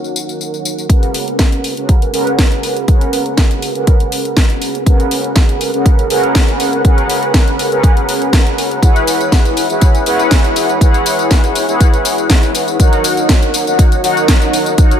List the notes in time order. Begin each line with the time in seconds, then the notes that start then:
Already playing: D#4 F#4 A#4 C#5 F#5
0.04 tambourine
0.16 tambourine
0.29 tambourine
0.41 tambourine
0.54 tambourine
0.65 tambourine
0.78 tambourine
0.88 C#4 G#4 A#4 B4 F#5, kick, closed hi-hat
1.03 closed hi-hat
1.14 open hi-hat
1.28 closed hi-hat
1.39 kick, snare, closed hi-hat
1.52 closed hi-hat
1.64 open hi-hat
1.77 C#4 G#4 A#4 B4 F#5, closed hi-hat
1.89 kick, closed hi-hat
2.02 closed hi-hat
2.12 C#4 G#4 A#4 B4 F#5, open hi-hat
2.27 closed hi-hat
2.39 kick, snare, closed hi-hat
2.52 closed hi-hat
2.63 open hi-hat
2.77 closed hi-hat
2.87 C#4 G#4 A#4 B4 F#5, kick, closed hi-hat
3.01 closed hi-hat
3.13 open hi-hat
3.26 closed hi-hat
3.37 kick, snare, closed hi-hat
3.51 closed hi-hat
3.62 open hi-hat
3.75 C#4 G#4 A#4 B4 F#5, closed hi-hat
3.87 kick, closed hi-hat
4.00 closed hi-hat
4.12 open hi-hat
4.25 closed hi-hat
4.37 kick, snare, closed hi-hat
4.50 closed hi-hat
4.62 open hi-hat
4.75 closed hi-hat
4.86 C#4 G#4 A#4 B4 F#5, kick, closed hi-hat
5.00 closed hi-hat
5.11 open hi-hat
5.24 closed hi-hat
5.36 kick, snare, closed hi-hat
5.49 closed hi-hat
5.61 open hi-hat
5.74 C#4 G#4 A#4 B4 F#5, closed hi-hat
5.86 kick, closed hi-hat
5.99 closed hi-hat
6.10 C#4 G#4 A#4 B4 F#5, open hi-hat
6.24 closed hi-hat
6.35 kick, snare, closed hi-hat
6.48 closed hi-hat
6.60 open hi-hat
6.73 closed hi-hat
6.84 C#4 G#4 A#4 B4 F#5, kick, closed hi-hat
6.98 closed hi-hat
7.10 open hi-hat
7.23 closed hi-hat
7.34 kick, snare, closed hi-hat
7.48 closed hi-hat
7.59 open hi-hat
7.71 C#4 G#4 A#4 B4 F#5, closed hi-hat
7.83 kick, closed hi-hat
7.97 closed hi-hat
8.09 open hi-hat
8.22 closed hi-hat
8.33 kick, snare, closed hi-hat
8.47 closed hi-hat
8.58 open hi-hat
8.71 closed hi-hat
8.82 E4 G#4 B4 C#5 F#5, kick, closed hi-hat, tambourine
8.96 closed hi-hat, tambourine
9.07 open hi-hat, tambourine
9.21 closed hi-hat, tambourine
9.32 kick, snare, closed hi-hat, tambourine
9.45 closed hi-hat, tambourine
9.57 open hi-hat, tambourine
9.70 E4 G#4 B4 C#5 F#5, closed hi-hat, tambourine
9.81 kick, closed hi-hat, tambourine
9.95 closed hi-hat, tambourine
10.06 E4 G#4 B4 C#5 F#5, open hi-hat, tambourine
10.19 closed hi-hat, tambourine
10.31 kick, snare, closed hi-hat, tambourine
10.44 closed hi-hat, tambourine
10.56 open hi-hat, tambourine
10.69 closed hi-hat, tambourine
10.81 E4 G#4 B4 C#5 F#5, kick, closed hi-hat, tambourine
10.94 closed hi-hat, tambourine
11.06 open hi-hat, tambourine
11.19 closed hi-hat, tambourine
11.31 kick, snare, closed hi-hat, tambourine
11.44 closed hi-hat, tambourine
11.55 open hi-hat, tambourine
11.68 E4 G#4 B4 C#5 F#5, closed hi-hat, tambourine
11.80 kick, closed hi-hat, tambourine
11.94 closed hi-hat, tambourine
12.05 open hi-hat, tambourine
12.18 closed hi-hat, tambourine
12.30 kick, snare, closed hi-hat, tambourine
12.43 closed hi-hat, tambourine
12.55 open hi-hat, tambourine
12.68 closed hi-hat, tambourine
12.79 D#4 F#4 A#4 C#5 F#5, kick, closed hi-hat, tambourine
12.93 closed hi-hat, tambourine
13.04 open hi-hat, tambourine
13.17 closed hi-hat, tambourine
13.29 kick, snare, closed hi-hat, tambourine
13.43 closed hi-hat, tambourine
13.54 open hi-hat, tambourine
13.67 D#4 F#4 A#4 C#5 F#5, closed hi-hat, tambourine
13.79 kick, closed hi-hat, tambourine
13.92 closed hi-hat, tambourine
14.03 D#4 F#4 A#4 C#5 F#5, open hi-hat, tambourine
14.17 closed hi-hat, tambourine
14.28 kick, snare, closed hi-hat, tambourine
14.42 closed hi-hat, tambourine
14.53 open hi-hat, tambourine
14.66 closed hi-hat, tambourine
14.77 D#4 F#4 A#4 C#5 F#5, kick, closed hi-hat, tambourine
14.91 closed hi-hat, tambourine